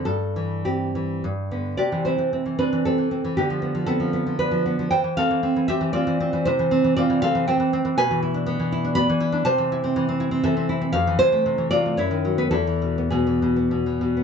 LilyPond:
\new Staff \with { instrumentName = "Nylon-string guitar" } { \time 3/4 \key c \major \tempo 4 = 117 << { a'4 g'4. r8 | <g' d''>8 <e' c''>4 <d' b'>8 <c' a'>4 | <b g'>4 <c' a'>4 <d' b'>4 | <c'' g''>8 <a' f''>4 <g' e''>8 <f' d''>4 |
<e' c''>4 <f' d''>8 <a' f''>8 <c'' g''>4 | \key e \phrygian <b' gis''>2 <d'' b''>4 | <c'' a''>2 <a' e''>8 r8 | <a' f''>8 <e' c''>4 <f' d''>8 <e' cis''>8. <dis' b'>16 |
<e' a'>4 <b gis'>4. r8 | } \\ { g,8 e8 c'8 e8 g,8 <d b>8 | c16 e16 c'16 e16 c'16 e16 c'16 e8 e16 c'16 e16 | d16 f16 b16 f16 b16 f16 b16 f16 b16 f16 b16 f16 | e16 e16 c'16 e16 c'16 e16 c'16 e16 c'16 e16 c'16 e16 |
c16 e16 c'16 e16 c'16 e16 c'16 e16 c'16 e16 c'16 e16 | b,16 e16 e'16 d'16 b16 e16 e'16 d'16 b16 e16 e'16 d'16 | c16 e16 e'16 c'16 e16 c'16 e'16 c'16 e16 c'16 e'16 c'16 | f,16 e16 c16 a16 c16 e16 c16 a16 fis,16 dis16 fis16 b16 |
e,16 e16 b,16 b16 b,16 e16 b,16 b16 b,16 e16 b,16 b16 | } >> }